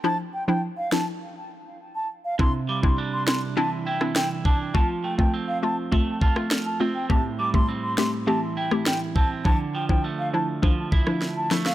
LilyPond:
<<
  \new Staff \with { instrumentName = "Flute" } { \time 4/4 \key d \dorian \tempo 4 = 102 a''16 r16 g''16 g''16 r16 f''16 a''16 r4. a''16 r16 f''16 | c'''16 r16 d'''16 c'''16 r16 c'''16 c'''16 r16 a''16 r16 g''16 r16 g''16 r16 a''16 r16 | a''16 r16 g''16 g''16 r16 f''16 a''16 r8. a''16 r8 a''16 r16 g''16 | a''16 r16 d'''16 c'''16 r16 c'''16 c'''16 r16 a''16 r16 g''16 r16 g''16 r16 a''16 r16 |
a''16 r16 g''16 g''16 r16 f''16 a''16 r4. a''16 r16 f''16 | }
  \new Staff \with { instrumentName = "Synth pluck" } { \time 4/4 \key d \dorian <f d' e'>16 r8 <f d' e'>16 r8 <f d' e'>16 r2 r16 | <c' d' e'>16 r8 <c' d' e'>16 r8 <c' d' e'>16 r16 <c' d' e'>8. <c' d' e'>16 r4 | <a c' f'>16 r8 <a c' f'>16 r8 <a c' f'>16 r16 <a c' f'>16 r8 <a c' f'>8. <a c' f'>8 | <a c' g'>16 r8 <a c' g'>16 r8 <a c' g'>16 r16 <a c' g'>8. <a c' g'>16 r4 |
<f d' e'>16 r8 <f d' e'>16 r8 <f d' e'>16 r16 <f d' e'>16 r8 <f d' e'>16 r8 <f d' e'>16 r16 | }
  \new Staff \with { instrumentName = "Clean electric guitar" } { \time 4/4 \key d \dorian r1 | c8 g8 d'4 e8 e'4 d'8 | f8 a8 c'4 a8 f'4 c'8 | a,8 g8 c'4 e8 e'4 c'8 |
d8 f8 a4 f8 e'4 a8 | }
  \new DrumStaff \with { instrumentName = "Drums" } \drummode { \time 4/4 r4 r8 sn8 r4 r4 | bd8. bd16 r8 sn8 r8. ss16 sn8 bd8 | bd8. bd16 r4 bd8 bd16 ss16 sn4 | bd8. bd16 r8 sn8 r8. ss16 sn8 bd8 |
bd8. bd16 r4 bd8 bd16 ss16 sn8 sn16 sn16 | }
>>